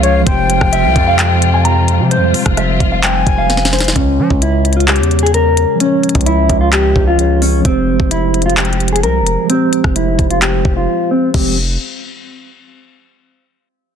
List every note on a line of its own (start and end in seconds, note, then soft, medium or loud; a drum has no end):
0.00 0.24 C#2 loud
0.00 0.23 C#3 medium
0.00 0.21 F3 medium
0.00 0.23 F3 medium
0.00 0.24 G#3 medium
0.00 0.29 C#4 medium
0.00 0.25 F4 loud
0.00 0.28 G#4 medium
0.00 0.28 C#5 medium
0.00 0.21 C#5 loud
0.00 0.25 F5 medium
0.00 closed hi-hat medium
0.21 2.05 F3 medium
0.21 2.06 G#3 medium
0.26 0.60 F1 loud
0.26 3.92 C3 medium
0.26 3.92 F3 medium
0.26 2.07 C4 medium
0.26 2.09 F4 loud
0.26 2.09 G4 medium
0.26 0.70 C5 loud
0.26 2.07 G5 loud
0.26 kick loud
0.26 closed hi-hat medium
0.32 2.10 C5 medium
0.50 closed hi-hat medium
0.61 0.86 F1 loud
0.61 kick loud
0.61 cross-stick loud
0.73 1.05 E5 medium
0.73 closed hi-hat medium
0.84 0.95 C2 loud
0.96 2.01 F2 loud
0.96 kick medium
0.96 closed hi-hat medium
1.07 1.16 F5 medium
1.18 1.51 G5 medium
1.18 clap loud
1.18 closed hi-hat medium
1.42 closed hi-hat medium
1.54 1.63 G#5 medium
1.65 2.08 A#5 loud
1.65 closed hi-hat medium
1.88 closed hi-hat medium
2.00 2.18 C3 loud
2.06 3.89 F3 medium
2.06 3.91 G#3 medium
2.11 3.93 G3 medium
2.11 3.92 C4 medium
2.11 3.94 F4 medium
2.11 2.55 C5 loud
2.11 closed hi-hat medium
2.16 2.33 F2 loud
2.16 3.95 C5 medium
2.34 closed hi-hat soft
2.34 open hi-hat medium
2.46 2.79 F1 loud
2.46 kick loud
2.46 cross-stick loud
2.46 closed hi-hat medium
2.57 2.90 E5 medium
2.57 cross-stick medium
2.57 closed hi-hat medium
2.80 3.25 F1 loud
2.80 kick medium
2.80 closed hi-hat medium
2.92 3.01 F5 medium
3.04 3.36 G5 medium
3.04 3.92 G#5 medium
3.04 clap loud
3.04 closed hi-hat medium
3.27 3.93 F1 loud
3.27 kick loud
3.27 closed hi-hat medium
3.38 3.71 F5 medium
3.50 snare medium
3.50 closed hi-hat medium
3.57 snare medium
3.65 snare medium
3.73 3.90 C5 medium
3.73 snare medium
3.73 closed hi-hat medium
3.79 snare loud
3.79 closed hi-hat medium
3.84 snare loud
3.84 closed hi-hat medium
3.90 5.74 C#3 medium
3.90 5.75 G#3 medium
3.90 closed hi-hat medium
3.95 4.20 C#2 loud
3.95 4.39 C#4 medium
3.95 5.77 C#4 medium
3.95 kick loud
3.95 closed hi-hat medium
4.01 5.79 C#5 medium
4.19 4.30 F3 loud
4.30 5.01 C#2 loud
4.30 kick loud
4.42 4.75 E4 medium
4.42 closed hi-hat medium
4.65 closed hi-hat medium
4.73 4.85 F4 medium
4.73 closed hi-hat medium
4.80 closed hi-hat medium
4.88 5.21 G4 medium
4.88 clap loud
4.88 closed hi-hat medium
4.96 5.65 E2 loud
4.96 closed hi-hat medium
5.03 closed hi-hat medium
5.11 closed hi-hat soft
5.19 5.31 G#4 medium
5.19 closed hi-hat medium
5.26 closed hi-hat medium
5.34 5.78 A#4 medium
5.34 closed hi-hat medium
5.57 closed hi-hat medium
5.75 7.13 F3 medium
5.75 7.15 G#3 medium
5.80 7.16 C#4 medium
5.80 6.24 C#4 medium
5.80 closed hi-hat medium
5.86 7.19 C#5 medium
6.03 closed hi-hat soft
6.09 closed hi-hat medium
6.15 6.48 C#2 loud
6.15 kick loud
6.15 closed hi-hat medium
6.21 closed hi-hat medium
6.26 6.59 E4 medium
6.26 closed hi-hat medium
6.49 6.94 C#2 loud
6.49 kick medium
6.49 closed hi-hat medium
6.61 6.70 F4 medium
6.72 7.05 G4 medium
6.72 clap loud
6.72 closed hi-hat medium
6.96 7.62 C#2 loud
6.96 kick loud
7.08 7.40 F4 medium
7.16 7.59 F3 medium
7.16 7.61 G#3 soft
7.16 7.65 C#4 soft
7.16 7.66 G#4 soft
7.16 closed hi-hat medium
7.21 7.66 C#5 medium
7.42 7.59 C#4 medium
7.42 open hi-hat medium
7.60 9.43 F3 medium
7.60 9.45 G#3 medium
7.65 7.98 F1 loud
7.65 9.46 C4 medium
7.65 8.09 C4 medium
7.65 9.47 G4 medium
7.65 kick loud
7.65 closed hi-hat medium
7.70 9.48 C5 medium
8.00 9.05 F1 loud
8.00 kick loud
8.11 8.44 E4 medium
8.11 closed hi-hat medium
8.34 closed hi-hat medium
8.42 8.54 F4 medium
8.42 closed hi-hat medium
8.50 closed hi-hat medium
8.57 8.90 G4 medium
8.57 clap loud
8.57 closed hi-hat medium
8.65 closed hi-hat medium
8.73 closed hi-hat medium
8.80 closed hi-hat soft
8.88 closed hi-hat medium
8.92 9.01 G#4 medium
8.92 closed hi-hat medium
9.03 9.22 C2 loud
9.03 9.47 A#4 medium
9.03 closed hi-hat medium
9.21 9.37 F1 loud
9.27 closed hi-hat medium
9.44 11.28 F3 medium
9.44 11.29 G#3 medium
9.50 11.31 C4 medium
9.50 9.93 C4 loud
9.50 11.32 G4 medium
9.50 closed hi-hat medium
9.55 11.33 C5 medium
9.73 closed hi-hat medium
9.84 10.18 F1 loud
9.84 kick loud
9.84 cross-stick loud
9.96 10.28 E4 medium
9.96 closed hi-hat medium
10.19 10.63 F1 loud
10.19 kick medium
10.19 closed hi-hat medium
10.31 10.39 F4 medium
10.31 closed hi-hat medium
10.42 10.75 G4 medium
10.42 clap loud
10.42 closed hi-hat medium
10.65 10.87 F1 loud
10.65 kick loud
10.77 11.09 F4 medium
11.11 11.29 C4 medium
11.34 11.77 F1 loud
11.34 11.56 F3 medium
11.34 11.56 G#3 medium
11.34 11.56 C4 medium
11.34 11.56 G4 loud
11.34 kick loud
11.34 crash loud